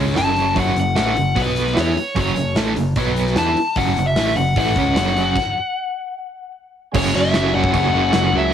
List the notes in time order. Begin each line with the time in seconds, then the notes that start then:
Already playing: C#2 C#3 G#3 C#4
0.07 snare
0.16 F#1 F#2 C#3 F#3 A5, snare, open hi-hat
0.36 open hi-hat
0.56 F#1 F#2 C#3 F#3 F#5, kick, open hi-hat
0.76 F#1 F#2 C#3, open hi-hat
0.80 F#5
0.95 A1 A2 E3 A3, snare, open hi-hat
1.15 F#1 F#2 C#3, open hi-hat
1.36 B1 B2 F#3 B3, kick, open hi-hat
1.42 B4
1.56 open hi-hat
1.67 snare
1.76 E2 E3 B3 E4 C#5, snare, open hi-hat
1.95 muted overdriven electric guitar stroke, muted picked electric bass stroke, muted distorted electric guitar stroke, open hi-hat
2.16 F#1 F#2 C#3 F#3, kick, open hi-hat
2.20 C#5
2.36 F#1 F#2 C#3, open hi-hat
2.55 A1 A2 E3 A3, snare, open hi-hat
2.76 F#1 F#2 C#3, open hi-hat
2.96 B1 B2 F#3 B3, kick, open hi-hat
3.16 open hi-hat
3.27 snare
3.35 E2 E3 B3 E4 A5, snare, open hi-hat
3.56 muted distorted electric guitar stroke, muted picked electric bass stroke, muted overdriven electric guitar stroke, open hi-hat
3.76 F#1 F#2 C#3 F#3 F#5, kick, open hi-hat
3.97 F#1 F#2 C#3, open hi-hat
4.07 E5
4.15 A1 A2 E3 A3, snare, open hi-hat
4.36 F#1 F#2 C#3 F#5, open hi-hat
4.56 A1 A2 E3 A3 F#5, kick, open hi-hat
4.76 C#2 C#3 G#3 C#4, kick, open hi-hat
4.96 F#1 F#2 C#3 F#3, snare, open hi-hat
5.17 open hi-hat
5.35 kick, crash
6.92 F#1 F#2 F#3 G#3 C#4 C#5, kick, crash
6.96 C#3 F#3
7.15 F#1 F#2 C#3 F#3 E5
7.34 F#1 F#2 C#3 F#3, snare, crash
7.54 F#1 F#2 C#3 F#3 F#5
7.64 kick
7.74 F#1 F#2 C#3 F#3, kick, crash
7.93 F#1 F#2 C#3 F#3
8.13 F#1 F#2 C#3 F#3, snare, crash
8.33 C#2 F#2 C#3 F#3
8.38 E5